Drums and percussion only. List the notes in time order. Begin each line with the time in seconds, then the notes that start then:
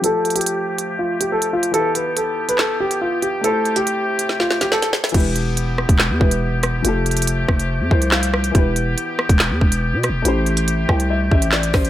0.04 closed hi-hat
0.25 closed hi-hat
0.30 closed hi-hat
0.36 closed hi-hat
0.41 closed hi-hat
0.46 closed hi-hat
0.78 closed hi-hat
1.21 closed hi-hat
1.42 closed hi-hat
1.63 closed hi-hat
1.74 closed hi-hat
1.95 closed hi-hat
2.17 closed hi-hat
2.49 closed hi-hat
2.58 snare, clap
2.91 closed hi-hat
3.22 closed hi-hat
3.44 closed hi-hat
3.65 closed hi-hat
3.76 closed hi-hat
3.87 closed hi-hat
4.19 closed hi-hat
4.29 snare
4.40 snare
4.51 snare
4.61 snare, closed hi-hat
4.72 snare
4.82 snare, closed hi-hat
4.93 snare
5.04 snare, closed hi-hat
5.09 closed hi-hat
5.14 kick, closed hi-hat, crash
5.20 closed hi-hat
5.36 closed hi-hat
5.57 closed hi-hat
5.78 cross-stick
5.89 kick, closed hi-hat
5.99 snare, clap
6.21 kick
6.31 closed hi-hat
6.63 cross-stick, closed hi-hat
6.85 closed hi-hat
7.06 closed hi-hat
7.11 closed hi-hat
7.17 closed hi-hat
7.22 closed hi-hat
7.27 closed hi-hat
7.49 kick, cross-stick
7.59 closed hi-hat
7.91 kick
8.02 closed hi-hat
8.12 snare, clap
8.23 closed hi-hat
8.34 cross-stick
8.44 closed hi-hat
8.55 kick, closed hi-hat
8.76 closed hi-hat
8.98 closed hi-hat
9.19 cross-stick
9.29 kick, closed hi-hat
9.39 snare, clap
9.61 kick
9.72 closed hi-hat
10.03 cross-stick, closed hi-hat
10.25 closed hi-hat
10.46 closed hi-hat
10.57 closed hi-hat
10.68 closed hi-hat
10.89 kick, cross-stick
11.00 closed hi-hat
11.31 kick
11.42 closed hi-hat
11.52 snare, clap
11.63 closed hi-hat
11.74 kick, cross-stick, snare, open hi-hat
11.85 closed hi-hat